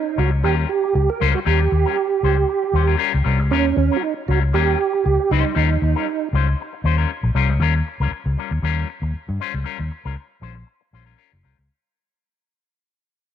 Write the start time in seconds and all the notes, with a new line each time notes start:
Already playing: D#4
0.17 C#2 G3 C#4 F4 F#4 A#4
0.31 muted clean electric guitar stroke
0.43 D#2 G3 C#4 F4 G4 A#4
0.68 G4, muted clean electric guitar stroke
0.84 muted clean electric guitar stroke
0.95 C#2 G4
1.09 A#4, muted clean electric guitar stroke
1.20 C#2 G3 C#4 F4 C5
1.34 F#4, muted clean electric guitar stroke
1.46 D#2 G3 C#4 F4 G4 A#4
1.61 muted clean electric guitar stroke
1.71 D#2, muted clean electric guitar stroke
1.86 G3 C#4 F4 A#4
1.97 muted clean electric guitar stroke
2.23 C#2 G3 C#4 F4 C5
2.37 muted clean electric guitar stroke
2.48 muted clean electric guitar stroke
2.63 muted clean electric guitar stroke
2.73 D#2 G3 C#4 F4 C5
2.87 G3 C#4 F4 A#4
2.98 G3 C#4 F4 A#4
3.14 C#2, muted clean electric guitar stroke
3.24 C2 G3 C#4 F4 A#4
3.39 C#2, muted clean electric guitar stroke
3.51 D#2 G3 C#4 F4 A#4
3.66 muted clean electric guitar stroke
3.77 D#2 C#4, muted clean electric guitar stroke
3.91 G3 C#4 F4 A#4
3.96 F#4
4.03 D#4, muted clean electric guitar stroke
4.28 C#2 G3 C#4 F4 F#4 A#4
4.43 muted clean electric guitar stroke
4.53 D#2 G3 C#4 F4 G4 A#4
4.81 muted clean electric guitar stroke
4.93 muted clean electric guitar stroke
5.06 C#2 G4
5.19 muted clean electric guitar stroke
5.31 C#2 G3 C#4 D#4 F4 C5
5.45 muted clean electric guitar stroke
5.55 D#2 G3 C#4 D#4 F4 A#4
5.71 muted clean electric guitar stroke
5.82 D#2, muted clean electric guitar stroke
5.96 G3 C#4 F4 A#4
6.08 muted clean electric guitar stroke
6.33 C#2 G3 C#4 F4 C5
6.49 muted clean electric guitar stroke
6.61 muted clean electric guitar stroke
6.73 muted clean electric guitar stroke
6.84 D#2 G3 C#4 F4 C5
6.98 G3 C#4 F4 A#4
7.23 A#1, muted clean electric guitar stroke
7.35 C2 G3 C#4 F4 A#4
7.49 C#2, muted clean electric guitar stroke
7.60 D#2 G3 C#4 F4 A#4
7.75 muted clean electric guitar stroke
7.87 muted clean electric guitar stroke
8.00 C#2 G3 C#4 F4 A#4
8.11 muted fingered electric bass stroke, muted clean electric guitar stroke
8.26 C#2
8.38 G3 C#4 F4 A#4
8.51 D#2, muted clean electric guitar stroke
8.62 D#2 G3 C#4 F4 A#4
8.89 muted clean electric guitar stroke
9.02 D#2, muted clean electric guitar stroke
9.14 muted fingered electric bass stroke
9.29 G2, muted clean electric guitar stroke
9.40 G3 C#4 F4 C5
9.54 C#2, muted clean electric guitar stroke
9.64 G3 C#4 F4 A#4
9.79 D#2, muted clean electric guitar stroke
9.91 muted clean electric guitar stroke
10.05 C#2 G3 C#4 F4 A#4
10.15 muted clean electric guitar stroke
10.41 A#1 G3 C#4 F4 C5
10.55 muted clean electric guitar stroke
10.67 muted clean electric guitar stroke
10.81 muted clean electric guitar stroke
10.93 A#1 G3 C#4 F4 C5
11.06 G3 C#4 F4 A#4
11.17 G3 C#4 F4 A#4
11.33 F#1
11.43 C2 G3 C#4 F4 A#4
11.58 C#2, muted clean electric guitar stroke